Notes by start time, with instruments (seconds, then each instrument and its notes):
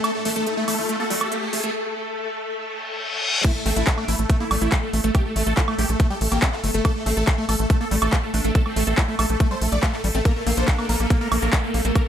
Already playing: synth drone A3 A4, riser
0.04 acid bass A3, supersaw synth A4, closed hi-hat, high woodblock
0.15 supersaw synth A3
0.25 analog synth bass A1, acid bass A3, supersaw synth A3, open hi-hat
0.36 analog synth bass A1, acid bass A3, supersaw synth A4, closed hi-hat
0.47 supersaw synth A3, closed hi-hat
0.57 acid bass A3, supersaw synth A3
0.68 analog synth bass A1, acid bass A3, supersaw synth A4, open hi-hat, high woodblock
0.78 analog synth bass A1, supersaw synth A3, open hi-hat
0.89 acid bass A3, supersaw synth A3, closed hi-hat
1.00 acid bass A#3, supersaw synth A4
1.10 analog synth bass A1, acid bass G3, supersaw synth A3, open hi-hat
1.21 analog synth bass A1, acid bass A3, supersaw synth A4, high woodblock
1.32 supersaw synth A3, acid bass A#3, closed hi-hat
1.42 supersaw synth A3
1.53 analog synth bass A1, acid bass A3, open hi-hat
1.64 analog synth bass A1, supersaw synth A3, acid bass A3, closed hi-hat
2.59 reverse cymbal
3.44 acid bass A3, synth drone A3 A4, supersaw synth E4, kick, closed hi-hat, crash
3.55 supersaw synth A3
3.66 analog synth bass A1, acid bass A3, supersaw synth A3, wobble bass C4, open hi-hat
3.76 analog synth bass A1, acid bass A3, wobble bass D4, supersaw synth E4, closed hi-hat
3.87 supersaw synth A3, kick, clap, closed hi-hat
3.98 supersaw synth A3, acid bass A3, high woodblock
4.08 analog synth bass A1, acid bass A3, supersaw synth E4, open hi-hat
4.19 analog synth bass A1, supersaw synth A3, closed hi-hat
4.30 supersaw synth A3, acid bass A3, kick, closed hi-hat
4.40 acid bass A#3, supersaw synth E4
4.51 analog synth bass A1, acid bass G3, supersaw synth A3, open hi-hat, high woodblock
4.61 analog synth bass A1, acid bass A3, supersaw synth E4, closed hi-hat
4.72 supersaw synth A3, acid bass A#3, kick, clap, closed hi-hat
4.83 supersaw synth A3
4.93 analog synth bass A1, acid bass A3, open hi-hat
5.04 analog synth bass A1, supersaw synth A3, acid bass A3, closed hi-hat
5.15 acid bass A3, supersaw synth G4, kick, closed hi-hat, high woodblock
5.25 supersaw synth A3
5.36 analog synth bass A1, supersaw synth A3, acid bass A3, open hi-hat
5.47 analog synth bass A1, acid bass A3, supersaw synth A4, closed hi-hat
5.57 supersaw synth A3, acid bass E4, kick, clap, closed hi-hat
5.68 acid bass A3, supersaw synth A3, high woodblock
5.79 analog synth bass A#1, acid bass A3, supersaw synth G4, open hi-hat
5.89 analog synth bass A#1, supersaw synth A3, closed hi-hat
6.00 acid bass A3, supersaw synth A3, kick, closed hi-hat
6.10 acid bass G3, supersaw synth G4
6.21 analog synth bass A1, supersaw synth A3, open hi-hat
6.32 analog synth bass A1, acid bass A#3, supersaw synth G4, closed hi-hat, high woodblock
6.42 supersaw synth A3, acid bass C4, kick, clap, closed hi-hat
6.53 supersaw synth A3, clap
6.64 analog synth bass G1, acid bass A3, open hi-hat
6.74 analog synth bass G1, supersaw synth A3, acid bass A3, closed hi-hat
6.85 acid bass A3, supersaw synth A4, kick, closed hi-hat, high woodblock
6.95 supersaw synth A3
7.06 analog synth bass A1, supersaw synth A3, acid bass A3, wobble bass C4, open hi-hat
7.17 analog synth bass A1, acid bass A3, supersaw synth A4, closed hi-hat
7.27 supersaw synth A3, kick, clap, closed hi-hat
7.38 acid bass A3, supersaw synth A3
7.49 analog synth bass A1, acid bass A3, supersaw synth A4, open hi-hat, high woodblock
7.59 analog synth bass A1, supersaw synth A3, closed hi-hat
7.70 acid bass A3, supersaw synth A3, kick, closed hi-hat
7.81 acid bass A#3, supersaw synth A4
7.91 analog synth bass A1, acid bass G3, supersaw synth A3, open hi-hat
8.02 analog synth bass A1, acid bass A3, supersaw synth A4, closed hi-hat, high woodblock
8.13 supersaw synth A3, acid bass A#3, kick, clap, closed hi-hat
8.23 supersaw synth A3
8.34 analog synth bass A1, acid bass A3, wobble bass D4, open hi-hat
8.44 analog synth bass A1, supersaw synth A3, acid bass A3, closed hi-hat
8.55 acid bass A3, supersaw synth A4, kick, closed hi-hat
8.66 supersaw synth A3, wobble bass C4, high woodblock
8.76 analog synth bass A1, supersaw synth A3, acid bass A3, open hi-hat
8.87 analog synth bass A1, acid bass A3, supersaw synth A4, closed hi-hat
8.98 supersaw synth A3, acid bass E4, kick, clap, closed hi-hat
9.08 supersaw synth A3, acid bass A3
9.19 analog synth bass A#1, acid bass A3, supersaw synth A4, open hi-hat, high woodblock
9.30 analog synth bass A#1, supersaw synth A3, closed hi-hat
9.40 acid bass A3, supersaw synth A3, kick, closed hi-hat
9.51 acid bass G3, supersaw synth C5
9.61 analog synth bass A#1, supersaw synth A3, open hi-hat
9.72 analog synth bass A#1, acid bass A3, supersaw synth D5, closed hi-hat
9.83 supersaw synth A3, acid bass A3, kick, clap, closed hi-hat, high woodblock
9.93 supersaw synth A3, clap
10.04 analog synth bass A1, acid bass G3, open hi-hat
10.15 analog synth bass A1, supersaw synth A3, acid bass C4, closed hi-hat
10.25 acid bass A#3, supersaw synth A#4, kick, closed hi-hat
10.36 supersaw synth A#3
10.47 analog synth bass A#1, supersaw synth A#3, acid bass A#3, wobble bass C4, open hi-hat
10.57 analog synth bass A#1, acid bass A#3, wobble bass D4, supersaw synth C5, closed hi-hat
10.68 supersaw synth A#3, kick, clap, closed hi-hat
10.78 supersaw synth A#3, acid bass A#3, high woodblock
10.89 analog synth bass A#1, acid bass A#3, supersaw synth A#4, open hi-hat
11.00 analog synth bass A#1, supersaw synth A#3, closed hi-hat
11.10 supersaw synth A#3, acid bass A#3, kick, closed hi-hat
11.21 acid bass A#3, supersaw synth A#4
11.32 analog synth bass A#1, acid bass A3, supersaw synth A#3, open hi-hat, high woodblock
11.42 analog synth bass A#1, acid bass A#3, supersaw synth A#4, closed hi-hat
11.53 supersaw synth A#3, acid bass C4, kick, clap, closed hi-hat
11.64 supersaw synth A#3
11.74 analog synth bass A#1, acid bass A#3, open hi-hat
11.85 analog synth bass A#1, acid bass A#3, supersaw synth A#3, closed hi-hat
11.95 acid bass A#3, supersaw synth A#4, kick, closed hi-hat, high woodblock